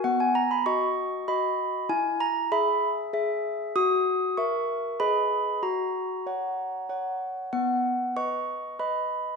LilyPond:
\new Staff \with { instrumentName = "Handbells" } { \time 3/4 \key b \major \tempo 4 = 96 << { fis''16 gis''16 ais''16 b''16 cis'''4 b''4 | gis''8 ais''8 b''8 r4. | dis'''4 cis'''4 b''4 | ais''2~ ais''8 r8 |
fis''4 cis'''4 b''4 | } \\ { b4 <fis' dis''>4 <fis' dis''>4 | e'4 <gis' e''>4 <gis' e''>4 | fis'4 <ais' e''>4 <gis' b' dis''>4 | fis'4 <cis'' fis''>4 <cis'' fis''>4 |
b4 <b' dis''>4 <b' dis''>4 | } >> }